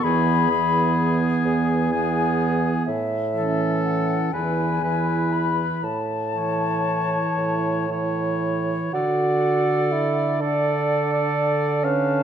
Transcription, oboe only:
0.04 0.49 G#4 soft
0.51 1.90 G#4 soft
1.92 2.86 G#4 soft
3.37 4.32 A4 soft
4.33 4.82 B4 soft
4.84 5.83 B4 soft
6.37 7.88 C#5 soft
7.92 8.93 C#5 soft
8.94 10.37 D5 soft
10.42 11.12 D5 soft
11.13 11.86 D5 soft
11.84 12.23 F5 soft

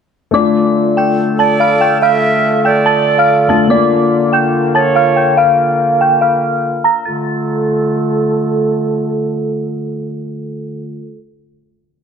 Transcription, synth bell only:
0.34 0.94 D5 medium
0.34 0.93 D6 medium
0.97 1.15 G5 medium
0.97 1.16 G6 medium
1.39 1.57 A5 medium
1.39 1.58 A6 medium
1.60 1.78 F5 medium
1.60 1.79 F6 medium
1.81 1.99 G5 medium
1.81 1.99 G6 medium
2.02 2.61 F5 medium
2.02 2.62 F6 medium
2.65 2.83 G5 medium
2.65 2.83 G6 medium
2.86 3.16 A5 medium
2.86 3.16 A6 medium
3.18 3.47 F5 medium
3.18 3.48 F6 medium
3.49 3.67 A5 medium
3.49 3.68 A6 medium
3.70 4.30 D5 medium
3.70 4.29 D6 medium
4.33 4.51 G5 medium
4.33 4.51 G6 medium
4.75 4.93 A5 medium
4.75 4.93 A6 medium
4.95 5.14 F5 medium
4.95 5.14 F6 medium
5.16 5.35 G5 medium
5.16 5.35 G6 medium
5.37 5.97 F5 loud
5.37 5.97 F6 medium
6.01 6.19 G5 medium
6.01 6.19 G6 medium
6.21 6.81 F5 medium
6.21 6.81 F6 medium
6.84 7.03 A#5 medium
6.84 7.03 A#6 medium
7.05 8.27 A6 medium

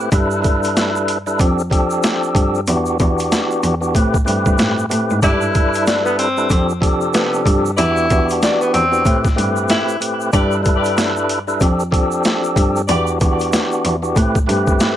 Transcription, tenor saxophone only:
5.23 5.83 E4 loud
5.87 6.04 D4 medium
6.05 6.17 B3 medium
6.18 6.67 C4 medium
7.14 7.43 B3 medium
7.78 8.38 E4 loud
8.43 8.60 D4 medium
8.60 8.72 B3 medium
8.73 9.22 C4 loud
9.70 9.98 E4 medium

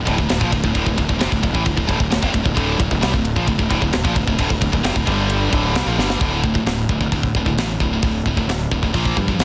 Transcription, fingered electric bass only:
0.07 0.18 D1 loud
0.18 0.29 D1 medium
0.30 0.41 D1 medium
0.41 0.52 A#1 loud
0.53 0.63 D1 medium
0.64 0.75 D1 medium
0.75 0.86 D1 medium
0.87 0.97 D1 medium
0.98 1.09 D1 medium
1.09 1.20 D1 medium
1.24 1.31 F1 loud
1.32 1.43 D1 medium
1.43 1.54 D1 medium
1.55 1.65 A1 medium
1.66 1.77 D1 medium
1.78 1.88 D1 medium
1.89 1.99 D1 loud
2.00 2.11 D1 medium
2.13 2.22 D1 medium
2.23 2.33 F1 loud
2.34 2.45 D1 medium
2.45 2.56 D1 medium
2.56 2.78 D1 medium
2.80 2.90 D1 medium
2.91 3.02 D1 medium
3.03 3.14 C2 medium
3.14 3.35 D1 medium
3.36 3.47 A#1 medium
3.48 3.59 D1 medium
3.59 3.70 D1 medium
3.71 3.81 D1 loud
3.82 3.93 D1 medium
3.95 4.04 D1 medium
4.05 4.15 A#1 medium
4.16 4.27 D1 medium
4.27 4.38 D1 medium
4.39 4.50 D1 medium
4.50 4.61 D1 medium
4.62 4.72 D1 medium
4.73 4.84 D1 medium
4.84 4.95 F1 loud
4.96 5.06 D1 medium
5.07 5.50 G1 loud
5.53 5.74 D1 loud
5.74 5.86 C2 medium
5.86 5.97 A#1 medium
5.98 6.20 G1 medium
6.21 6.57 D1 medium
6.66 6.85 D1 medium
6.89 7.07 D1 medium
7.13 7.31 D2 medium
7.35 7.53 D1 medium
7.57 7.76 A1 medium
7.81 7.99 D1 medium
8.03 8.21 D1 medium
8.26 8.44 D1 medium
8.47 8.66 D1 medium
8.72 8.90 D1 loud
8.94 9.12 A#1 medium
9.17 9.35 G2 medium
9.39 9.44 A1 loud

